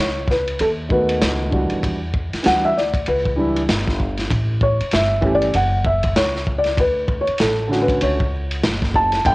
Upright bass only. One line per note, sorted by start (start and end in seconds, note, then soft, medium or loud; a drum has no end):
0.00 0.57 C#2 medium
0.60 1.19 D#2 medium
1.22 1.69 C#2 loud
1.72 muted upright bass stroke soft
1.83 2.30 E2 medium
2.33 muted upright bass stroke soft
2.46 3.04 D2 medium
3.08 3.66 C#2 medium
3.69 4.28 G1 medium
4.31 4.78 A1 loud
4.81 muted upright bass stroke soft
4.93 5.51 G1 medium
5.55 6.13 F#1 medium
6.16 6.75 C#2 medium
6.78 7.25 D2 loud
7.28 muted upright bass stroke soft
7.40 7.99 A1 medium
8.02 8.61 C#2 medium
8.64 9.23 F#1 medium
9.25 9.35 G1 loud